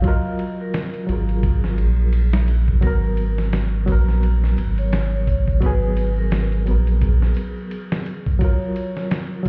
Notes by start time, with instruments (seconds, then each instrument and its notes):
Already playing: reed electric piano F#3 F4 A#4
0.02 reed electric piano F#3 F4, kick, ride
0.07 reed electric piano A#4, vibraphone D#5
0.39 ride
0.61 vibraphone A#4
0.74 snare, ride
0.94 ride
1.06 sub bass G#1, reed electric piano F#3 F4, ride
1.11 vibraphone G#4, reed electric piano A#4
1.29 ride
1.43 kick, ride
1.64 snare
1.78 sub bass A#1, ride
2.13 ride
2.33 snare
2.48 ride
2.68 kick
2.81 sub bass G#1, reed electric piano F#3 B3, vibraphone A#4, kick, ride, tambourine
2.87 reed electric piano A#4
3.03 tambourine
3.17 ride, tambourine, triangle
3.38 snare, tambourine
3.53 snare, ride, tambourine
3.74 tambourine
3.86 sub bass A#1, reed electric piano F#3 B3, kick, ride, tambourine
3.92 reed electric piano A#4
4.08 snare, tambourine
4.22 ride, tambourine
4.43 snare, tambourine
4.57 sub bass G#1, ride, tambourine
4.77 vibraphone C#5, ride, tambourine, triangle
4.92 snare, ride, tambourine
5.14 vibraphone C#5, tambourine
5.27 kick, ride, tambourine
5.48 kick, tambourine
5.60 reed electric piano F#3 B3, kick, ride, tambourine
5.65 reed electric piano G#4, vibraphone B4
5.83 tambourine
5.96 ride, tambourine, triangle
6.16 vibraphone A#4, tambourine
6.31 snare, ride, tambourine
6.52 ride, tambourine
6.66 sub bass A#1, reed electric piano F#3 B3, vibraphone G#4, ride, tambourine
6.71 reed electric piano A#4
6.87 ride, tambourine
7.01 kick, ride, tambourine
7.22 snare, tambourine
7.34 ride, tambourine
7.57 tambourine
7.71 ride, tambourine
7.91 snare, tambourine
8.05 ride, tambourine
8.26 kick, tambourine, triangle
8.39 reed electric piano F#3 F4, kick, ride, tambourine
8.43 reed electric piano A#4, vibraphone C#5
8.62 tambourine
8.76 ride, tambourine, triangle
8.96 snare, tambourine
9.11 snare, ride, tambourine
9.33 tambourine
9.43 reed electric piano F#3, kick, ride